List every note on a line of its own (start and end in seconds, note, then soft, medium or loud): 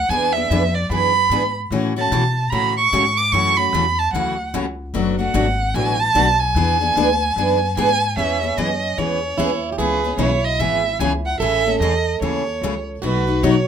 0.00 0.11 F#5 loud
0.09 0.48 E2 medium
0.09 0.31 E3 medium
0.09 0.31 B3 medium
0.09 0.31 D4 medium
0.09 0.31 G#4 medium
0.09 0.31 B4 medium
0.09 0.34 G#5 loud
0.33 0.50 D4 soft
0.33 0.50 G#4 medium
0.33 0.76 E5 medium
0.37 0.51 B3 soft
0.50 0.89 F2 medium
0.50 0.61 E3 medium
0.50 0.62 B3 medium
0.50 0.62 D4 medium
0.50 0.62 G#4 loud
0.50 0.62 B4 medium
0.75 0.90 D5 medium
0.90 1.29 F#2 medium
0.90 1.11 E3 medium
0.90 1.12 B3 medium
0.90 1.12 D4 medium
0.90 1.12 G#4 medium
0.90 1.12 B4 medium
0.90 1.52 B5 loud
1.30 1.69 G#2 medium
1.30 1.42 E3 medium
1.30 1.42 B3 medium
1.30 1.42 D4 medium
1.30 1.42 G#4 medium
1.30 1.42 B4 medium
1.70 2.10 A2 medium
1.70 1.92 C#3 medium
1.70 1.92 E3 medium
1.70 1.92 A3 medium
1.70 1.92 C#4 medium
1.70 1.93 F#4 medium
1.70 1.93 A4 medium
1.96 2.11 A3 soft
1.96 2.11 C#4 medium
1.96 2.11 F#4 medium
1.96 2.51 A5 medium
2.11 2.50 B2 medium
2.11 2.23 C#3 medium
2.11 2.23 E3 medium
2.11 2.23 A3 medium
2.11 2.23 C#4 medium
2.11 2.23 F#4 loud
2.11 2.23 A4 medium
2.50 2.91 A2 medium
2.50 2.73 C#3 medium
2.50 2.73 E3 medium
2.50 2.73 A3 medium
2.50 2.73 C#4 medium
2.50 2.73 F#4 medium
2.50 2.73 A4 medium
2.50 2.53 A#5 medium
2.50 2.76 B5 medium
2.77 3.19 C#6 loud
2.92 3.31 G#2 medium
2.92 3.03 C#3 medium
2.92 3.03 E3 medium
2.92 3.04 A3 medium
2.92 3.04 C#4 loud
2.92 3.04 F#4 medium
2.92 3.03 A4 medium
3.17 3.34 D6 medium
3.32 3.71 F#2 medium
3.32 3.54 C#3 medium
3.32 3.54 E3 medium
3.32 3.53 F#3 medium
3.32 3.54 A3 medium
3.32 3.54 C#4 medium
3.32 3.54 E4 medium
3.32 3.54 F#4 medium
3.32 3.54 A4 medium
3.32 3.59 C#6 loud
3.58 3.73 A3 soft
3.58 3.73 C#4 medium
3.58 3.72 F#4 medium
3.58 4.00 B5 medium
3.73 4.12 E2 medium
3.73 3.84 C#3 medium
3.73 3.84 E3 medium
3.73 3.84 F#3 medium
3.73 3.84 A3 medium
3.73 3.85 C#4 medium
3.73 3.84 E4 medium
3.73 3.85 F#4 medium
3.73 3.84 A4 medium
3.99 4.13 A5 medium
4.13 4.52 D2 medium
4.13 4.35 C#3 medium
4.13 4.35 E3 medium
4.13 4.34 F#3 medium
4.13 4.35 A3 medium
4.13 4.35 C#4 medium
4.13 4.34 E4 medium
4.13 4.35 F#4 medium
4.13 4.34 A4 medium
4.13 4.51 F#5 medium
4.54 4.93 C#2 medium
4.54 4.65 C#3 medium
4.54 4.65 E3 loud
4.54 4.65 F#3 medium
4.54 4.65 A3 loud
4.54 4.65 C#4 medium
4.54 4.65 E4 medium
4.54 4.65 F#4 medium
4.54 4.65 A4 medium
4.94 5.33 F#1 medium
4.94 5.14 B2 medium
4.94 5.15 F#3 medium
4.94 5.15 A3 medium
4.94 5.15 D4 medium
4.94 5.15 F#4 medium
4.94 5.15 B4 medium
5.19 5.33 A3 soft
5.19 5.34 D4 medium
5.19 5.33 F#4 medium
5.19 5.76 F#5 medium
5.34 5.73 G#1 medium
5.34 5.45 B2 medium
5.34 5.45 F#3 medium
5.34 5.45 A3 loud
5.34 5.45 D4 loud
5.34 5.45 F#4 loud
5.34 5.46 B4 loud
5.74 6.13 A1 medium
5.74 5.95 B2 medium
5.74 5.95 F#3 medium
5.74 5.96 A3 medium
5.74 5.96 D4 medium
5.74 5.96 F#4 medium
5.74 5.96 B4 medium
5.74 6.01 G#5 loud
6.00 6.41 A5 loud
6.15 6.54 B1 medium
6.15 6.26 B2 medium
6.15 6.26 F#3 medium
6.15 6.26 A3 loud
6.15 6.26 D4 medium
6.15 6.26 F#4 loud
6.15 6.27 B4 medium
6.40 7.76 G#5 loud
6.55 6.94 E2 medium
6.55 6.76 E3 medium
6.55 6.77 B3 medium
6.55 6.77 D4 medium
6.55 6.77 G#4 medium
6.55 6.77 B4 medium
6.81 6.96 B3 soft
6.81 6.96 D4 medium
6.81 6.95 G#4 medium
6.96 7.35 D2 medium
6.96 7.07 E3 medium
6.96 7.07 B3 medium
6.96 7.07 D4 loud
6.96 7.08 G#4 medium
6.96 7.08 B4 medium
7.36 7.75 F#2 medium
7.36 7.58 E3 medium
7.36 7.58 B3 medium
7.36 7.58 D4 medium
7.36 7.58 G#4 medium
7.36 7.58 B4 medium
7.77 8.16 G#2 medium
7.77 7.88 E3 medium
7.77 7.88 B3 medium
7.77 7.88 D4 loud
7.77 7.88 G#4 loud
7.77 7.88 B4 medium
7.77 8.15 G#5 loud
8.17 8.56 E2 medium
8.17 8.38 E3 medium
8.17 8.38 G#3 medium
8.17 8.38 B3 medium
8.17 9.42 C#4 medium
8.17 8.39 C#4 medium
8.17 8.39 G#4 medium
8.17 8.38 B4 medium
8.17 8.59 E5 medium
8.43 8.57 B3 soft
8.43 8.57 C#4 soft
8.43 8.57 G#4 medium
8.57 8.96 F#2 medium
8.57 8.68 E3 medium
8.57 8.68 G#3 medium
8.57 8.69 B3 medium
8.57 8.69 C#4 medium
8.57 8.69 G#4 medium
8.57 8.69 B4 medium
8.57 9.00 D#5 medium
8.98 9.37 E2 medium
8.98 9.19 E3 medium
8.98 9.19 G#3 medium
8.98 9.19 B3 medium
8.98 9.19 C#4 medium
8.98 9.19 G#4 medium
8.98 9.19 B4 medium
8.98 9.63 C#5 medium
9.38 9.77 D#2 medium
9.38 9.49 E3 medium
9.38 9.49 G#3 medium
9.38 9.50 B3 medium
9.38 9.50 C#4 medium
9.38 9.72 E4 medium
9.38 9.50 G#4 medium
9.38 9.50 B4 medium
9.72 9.78 G4 medium
9.78 10.17 C#2 medium
9.78 10.00 C#3 medium
9.78 10.00 E3 medium
9.78 9.99 G#3 medium
9.78 10.00 B3 medium
9.78 10.00 C#4 medium
9.78 10.00 E4 medium
9.78 10.20 G#4 medium
9.78 10.00 G#4 medium
9.78 10.16 B4 medium
10.04 10.18 B3 soft
10.04 10.18 C#4 medium
10.04 10.18 G#4 medium
10.17 10.57 B1 medium
10.17 10.30 C#3 medium
10.17 10.30 E3 medium
10.17 10.30 G#3 medium
10.17 10.30 B3 medium
10.17 10.30 C#4 medium
10.17 11.36 E4 medium
10.17 10.30 E4 medium
10.17 10.30 G#4 medium
10.17 10.46 C#5 medium
10.45 10.61 D#5 medium
10.59 10.98 G#1 medium
10.59 10.81 C#3 medium
10.59 10.80 E3 medium
10.59 10.81 G#3 medium
10.59 10.81 B3 medium
10.59 10.81 C#4 medium
10.59 10.81 E4 medium
10.59 10.81 G#4 medium
10.59 10.99 E5 medium
10.99 11.39 C#2 medium
10.99 11.11 C#3 medium
10.99 11.11 E3 medium
10.99 11.11 G#3 medium
10.99 11.11 B3 medium
10.99 11.11 C#4 loud
10.99 11.12 E4 medium
10.99 11.11 G#4 medium
10.99 11.11 G#5 medium
11.26 11.40 F#5 medium
11.40 11.79 A1 medium
11.40 11.62 C#3 medium
11.40 11.62 E3 medium
11.40 11.62 G#3 medium
11.40 11.62 A3 medium
11.40 11.62 C#4 medium
11.40 11.62 E4 medium
11.40 11.62 G#4 medium
11.40 12.98 A4 medium
11.40 11.62 A4 medium
11.40 11.78 E5 medium
11.66 11.81 A3 soft
11.66 11.81 C#4 soft
11.66 11.80 G#4 medium
11.80 12.19 E2 medium
11.80 11.92 C#3 medium
11.80 11.92 E3 medium
11.80 11.92 G#3 medium
11.80 11.92 A3 medium
11.80 11.93 C#4 medium
11.80 11.93 E4 medium
11.80 11.93 G#4 medium
11.80 11.93 A4 medium
11.80 12.19 D#5 medium
12.21 12.60 D#2 medium
12.21 12.43 C#3 medium
12.21 12.43 E3 medium
12.21 12.43 G#3 medium
12.21 12.43 A3 medium
12.21 12.43 C#4 medium
12.21 12.43 E4 medium
12.21 12.43 G#4 medium
12.21 12.43 A4 medium
12.21 12.83 C#5 medium
12.61 13.01 C#2 medium
12.61 12.74 C#3 medium
12.61 12.74 E3 medium
12.61 12.74 G#3 medium
12.61 12.74 A3 medium
12.61 12.74 C#4 loud
12.61 12.74 E4 medium
12.61 12.74 G#4 medium
12.61 12.74 A4 medium
13.02 13.42 B1 medium
13.02 13.23 B2 medium
13.02 13.24 D#3 medium
13.02 13.23 F#3 medium
13.02 13.24 A3 medium
13.02 13.24 B3 medium
13.02 13.24 D#4 medium
13.02 13.68 F#4 loud
13.02 13.24 F#4 medium
13.02 13.24 A4 medium
13.02 13.45 B4 medium
13.27 13.43 A3 soft
13.27 13.42 D#4 medium
13.27 13.42 F#4 medium
13.43 13.68 B2 medium
13.43 13.54 B2 medium
13.43 13.54 D#3 medium
13.43 13.54 F#3 medium
13.43 13.54 A3 medium
13.43 13.55 B3 medium
13.43 13.54 D#4 medium
13.43 13.54 F#4 loud
13.43 13.55 A4 medium
13.43 13.68 C#5 medium